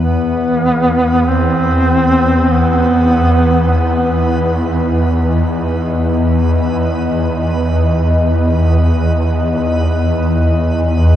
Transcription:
0.00 11.16 E2 medium
0.00 11.16 E3 medium
0.00 1.28 B3 loud
0.00 11.16 B3 medium
0.00 1.82 B4 medium
0.00 11.16 B4 medium
1.26 2.53 C4 loud
1.74 11.16 D#5 medium
2.52 3.77 B3 loud
3.79 4.69 B3 medium

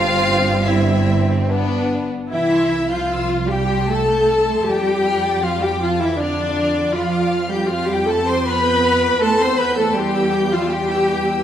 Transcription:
0.00 2.10 G1 medium
0.00 2.10 G2 medium
0.00 0.66 C4 medium
0.00 0.63 F4 loud
0.00 0.65 F5 loud
0.65 1.48 C4 medium
0.65 1.49 E4 medium
0.65 1.49 E5 medium
1.50 2.10 B3 medium
1.50 2.10 D4 medium
2.30 4.64 C2 medium
2.30 2.86 E3 medium
2.30 2.86 E4 medium
2.30 2.88 E5 medium
2.30 2.50 G5 medium
2.52 2.71 C6 medium
2.71 2.90 E6 medium
2.89 3.50 F3 medium
2.89 3.50 F4 medium
2.89 3.50 F5 medium
2.89 3.10 G6 medium
3.11 3.30 E6 medium
3.31 3.50 C6 medium
3.49 3.89 G3 medium
3.49 3.90 G4 medium
3.49 3.89 G5 medium
3.49 3.71 G5 medium
3.71 3.90 C6 soft
3.88 4.67 A3 medium
3.88 4.67 A4 medium
3.88 4.68 A5 medium
3.88 4.10 E6 medium
4.12 4.30 G6 medium
4.30 4.49 E6 soft
4.51 4.69 C6 medium
4.67 9.17 F2 medium
4.67 5.43 G3 medium
4.67 5.43 G4 medium
4.67 5.45 G5 medium
4.67 4.86 A5 medium
4.88 5.06 D6 medium
5.06 5.25 F6 medium
5.25 5.44 A6 soft
5.43 5.63 F3 medium
5.43 5.63 F4 medium
5.43 5.63 F5 medium
5.43 5.62 F6 medium
5.62 5.81 G3 medium
5.62 5.82 G4 medium
5.62 5.82 G5 medium
5.62 5.81 D6 soft
5.80 5.99 F3 medium
5.80 6.00 F4 medium
5.80 6.01 F5 medium
5.80 6.01 A5 medium
6.00 6.19 E3 medium
6.00 6.20 E4 medium
6.00 6.20 E5 medium
6.00 6.20 D6 soft
6.19 6.95 D3 medium
6.19 6.95 D4 medium
6.19 6.94 D5 medium
6.19 6.38 F6 medium
6.40 6.58 A6 medium
6.59 6.77 F6 medium
6.75 6.95 D6 medium
6.95 7.51 F3 medium
6.95 7.51 F4 medium
6.95 7.52 F5 medium
6.95 7.12 B5 medium
7.12 7.31 D6 medium
7.32 7.51 F6 medium
7.51 7.70 G3 medium
7.51 7.70 G4 medium
7.51 7.72 G5 medium
7.51 7.70 G6 medium
7.69 7.90 F3 medium
7.69 7.89 F4 medium
7.69 7.90 F5 medium
7.69 7.89 F6 medium
7.88 8.09 G3 medium
7.88 8.08 G4 medium
7.88 8.09 G5 medium
7.88 8.08 D6 medium
8.08 8.27 A3 medium
8.08 8.28 A4 medium
8.08 8.28 A5 medium
8.08 8.27 B5 soft
8.26 8.46 C4 medium
8.26 8.46 C5 medium
8.26 8.47 C6 medium
8.26 8.46 D6 medium
8.46 9.21 B3 medium
8.46 9.20 B4 medium
8.46 9.21 B5 medium
8.46 8.65 F6 medium
8.64 8.83 G6 medium
8.85 9.03 F6 medium
9.02 9.21 D6 soft
9.21 11.39 E2 medium
9.21 9.39 A3 medium
9.21 9.40 A4 medium
9.21 9.39 A5 medium
9.21 9.38 C6 medium
9.40 9.58 C4 medium
9.40 9.59 C5 medium
9.40 9.58 C6 medium
9.40 9.59 E6 medium
9.59 9.77 B3 medium
9.59 9.77 B4 medium
9.59 9.77 B5 medium
9.59 9.78 G6 medium
9.77 9.96 A3 medium
9.77 9.96 A4 medium
9.77 9.95 A5 medium
9.77 9.97 E6 medium
9.95 10.52 G3 medium
9.95 10.52 G4 medium
9.95 10.51 G5 medium
9.95 10.15 C6 medium
10.14 10.33 E6 soft
10.34 10.52 G6 medium
10.52 10.70 F3 medium
10.52 10.71 F4 medium
10.52 10.70 F5 medium
10.52 10.71 E6 medium
10.70 11.43 G3 medium
10.70 11.44 G4 medium
10.70 11.43 G5 medium
10.70 10.89 C6 medium
10.88 11.06 E6 medium
11.06 11.24 G6 medium
11.27 11.44 E6 soft

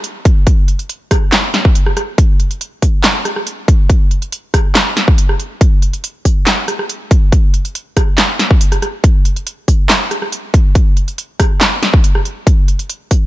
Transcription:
0.04 closed hi-hat medium
0.25 kick loud
0.25 closed hi-hat medium
0.47 kick loud
0.47 closed hi-hat medium
0.68 closed hi-hat soft
0.79 closed hi-hat soft
0.89 closed hi-hat medium
1.11 kick medium
1.11 cross-stick medium
1.11 open hi-hat medium
1.32 snare loud
1.32 clap medium
1.32 closed hi-hat medium
1.54 snare medium
1.54 closed hi-hat medium
1.65 kick loud
1.75 closed hi-hat medium
1.86 cross-stick medium
1.97 cross-stick medium
1.97 closed hi-hat medium
2.18 kick loud
2.18 closed hi-hat medium
2.40 closed hi-hat soft
2.51 closed hi-hat soft
2.61 closed hi-hat medium
2.82 kick medium
2.82 open hi-hat medium
3.04 snare loud
3.04 clap medium
3.04 closed hi-hat medium
3.25 cross-stick medium
3.25 closed hi-hat medium
3.36 cross-stick medium
3.47 closed hi-hat medium
3.68 kick loud
3.68 closed hi-hat medium
3.90 kick loud
3.90 closed hi-hat medium
4.11 closed hi-hat soft
4.22 closed hi-hat soft
4.32 closed hi-hat medium
4.54 kick medium
4.54 cross-stick medium
4.54 open hi-hat loud
4.75 snare loud
4.75 clap medium
4.75 closed hi-hat medium
4.97 snare medium
4.97 closed hi-hat medium
5.08 kick loud
5.18 closed hi-hat medium
5.29 cross-stick medium
5.40 closed hi-hat medium
5.61 kick loud
5.61 closed hi-hat medium
5.82 closed hi-hat medium
5.93 closed hi-hat soft
6.04 closed hi-hat medium
6.25 kick medium
6.25 open hi-hat loud
6.47 snare loud
6.47 clap medium
6.47 closed hi-hat medium
6.68 cross-stick medium
6.68 closed hi-hat medium
6.79 cross-stick medium
6.89 closed hi-hat medium
7.11 kick loud
7.11 closed hi-hat medium
7.32 kick loud
7.32 closed hi-hat medium
7.54 closed hi-hat medium
7.65 closed hi-hat soft
7.75 closed hi-hat medium
7.97 kick medium
7.97 cross-stick medium
7.97 open hi-hat loud
8.18 snare loud
8.18 clap loud
8.18 closed hi-hat medium
8.39 snare medium
8.39 closed hi-hat medium
8.51 kick loud
8.61 closed hi-hat medium
8.72 cross-stick medium
8.72 closed hi-hat soft
8.82 cross-stick medium
8.82 closed hi-hat medium
9.04 kick loud
9.04 closed hi-hat medium
9.25 closed hi-hat medium
9.36 closed hi-hat soft
9.47 closed hi-hat medium
9.68 kick medium
9.68 open hi-hat medium
9.90 snare loud
9.90 clap loud
9.90 closed hi-hat medium
10.11 cross-stick medium
10.11 closed hi-hat medium
10.22 cross-stick soft
10.32 closed hi-hat medium
10.54 kick loud
10.54 closed hi-hat medium
10.75 kick loud
10.75 closed hi-hat medium
10.97 closed hi-hat medium
11.08 closed hi-hat soft
11.18 closed hi-hat medium
11.40 kick medium
11.40 cross-stick medium
11.40 open hi-hat medium
11.61 snare loud
11.61 clap medium
11.61 closed hi-hat medium
11.83 snare medium
11.83 closed hi-hat medium
11.94 kick loud
12.04 closed hi-hat medium
12.15 cross-stick medium
12.25 closed hi-hat medium
12.47 kick loud
12.47 closed hi-hat medium
12.68 closed hi-hat soft
12.79 closed hi-hat soft
12.90 closed hi-hat medium
13.11 kick medium
13.11 open hi-hat medium

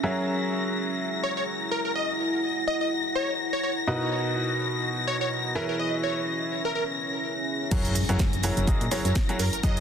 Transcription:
0.00 3.85 F#3 medium
0.00 1.47 C#4 medium
0.00 3.87 E4 medium
0.00 3.85 F#4 medium
0.00 4.51 G#4 medium
0.00 3.85 G#4 medium
0.00 3.85 A#4 medium
0.00 3.85 C#5 medium
0.00 1.58 E5 medium
0.00 3.85 E5 medium
0.00 7.70 A#6 medium
0.33 4.55 F#5 medium
1.23 1.32 C#5 medium
1.37 1.44 C#5 medium
1.46 5.56 A#5 medium
1.71 1.80 A#4 medium
1.85 1.92 A#4 medium
1.95 2.11 D#5 medium
2.68 2.76 D#5 medium
2.81 2.88 D#5 medium
3.15 3.31 C#5 medium
3.53 3.60 C#5 medium
3.63 3.72 C#5 medium
3.87 5.53 B2 medium
3.87 6.43 B3 loud
3.87 5.53 D#4 medium
3.87 5.53 F#4 medium
3.87 5.53 A#4 medium
3.87 5.53 B4 medium
3.87 5.53 D#5 medium
4.05 6.43 F#4 medium
5.07 5.16 C#5 medium
5.21 5.28 C#5 medium
5.55 7.69 E3 medium
5.55 9.26 C#4 medium
5.55 7.69 E4 medium
5.55 7.69 G#4 medium
5.55 5.64 A#4 medium
5.55 7.69 B4 medium
5.55 7.69 C#5 medium
5.55 7.69 E5 medium
5.69 5.76 A#4 medium
5.76 5.95 D#5 medium
5.76 8.69 E5 medium
5.88 9.80 G#4 medium
6.03 6.19 C#5 medium
6.65 6.72 A#4 medium
6.75 6.84 A#4 medium
7.71 8.04 F#2 loud
7.71 7.93 F#3 medium
7.71 9.80 E4 medium
7.71 7.93 E4 medium
7.71 7.93 F#4 medium
7.71 7.93 G#4 medium
7.71 7.93 A#4 medium
7.71 7.93 C#5 medium
7.71 9.80 A#6 medium
7.71 kick loud
7.71 closed hi-hat medium
7.71 crash loud
7.71 impact medium
7.71 shaker soft
7.85 closed hi-hat soft
7.85 shaker soft
7.95 open hi-hat loud
7.95 shaker medium
8.09 8.17 F#2 medium
8.09 8.21 F#3 medium
8.09 8.21 E4 medium
8.09 8.21 F#4 medium
8.09 8.21 G#4 medium
8.09 8.21 A#4 medium
8.09 8.21 C#5 loud
8.09 cross-stick medium
8.09 closed hi-hat soft
8.09 shaker soft
8.17 8.52 F#2 medium
8.17 9.80 F#5 medium
8.17 kick loud
8.17 snare loud
8.17 closed hi-hat medium
8.17 shaker soft
8.33 closed hi-hat soft
8.33 shaker soft
8.43 8.64 F#3 medium
8.43 8.64 E4 medium
8.43 8.64 F#4 medium
8.43 8.64 G#4 medium
8.43 8.64 A#4 medium
8.43 8.64 C#5 loud
8.43 open hi-hat loud
8.43 shaker medium
8.57 8.74 F#1 medium
8.57 closed hi-hat soft
8.57 shaker soft
8.67 8.82 F#3 medium
8.67 8.82 E4 medium
8.67 8.82 F#4 medium
8.67 8.82 G#4 medium
8.67 8.82 A#4 medium
8.67 8.82 D#5 medium
8.67 kick loud
8.67 closed hi-hat medium
8.67 shaker soft
8.81 8.89 A#2 loud
8.81 closed hi-hat soft
8.81 shaker soft
8.91 9.13 F#3 medium
8.91 9.13 E4 medium
8.91 9.13 F#4 medium
8.91 9.13 G#4 medium
8.91 9.13 A#4 medium
8.91 9.00 C#5 medium
8.91 9.13 C#5 medium
8.91 cross-stick medium
8.91 open hi-hat loud
8.91 shaker medium
9.05 9.13 F#2 medium
9.05 9.12 C#5 medium
9.05 closed hi-hat soft
9.05 shaker soft
9.10 9.80 A#5 medium
9.15 kick loud
9.15 snare loud
9.15 closed hi-hat medium
9.15 shaker soft
9.29 9.41 F#3 medium
9.29 9.41 E4 medium
9.29 9.41 F#4 medium
9.29 9.41 G#4 medium
9.29 9.41 A#4 medium
9.29 9.41 C#5 loud
9.29 closed hi-hat soft
9.29 shaker soft
9.39 9.50 F#2 medium
9.39 9.48 A#4 loud
9.39 open hi-hat loud
9.39 shaker medium
9.53 9.60 A#4 medium
9.53 closed hi-hat soft
9.53 shaker soft
9.63 9.80 F#2 loud
9.63 9.80 F#3 medium
9.63 9.80 E4 medium
9.63 9.80 F#4 medium
9.63 9.80 G#4 medium
9.63 9.80 A#4 medium
9.63 9.80 C#5 medium
9.63 9.79 D#5 medium
9.63 kick loud
9.63 closed hi-hat medium
9.63 shaker soft
9.77 closed hi-hat soft

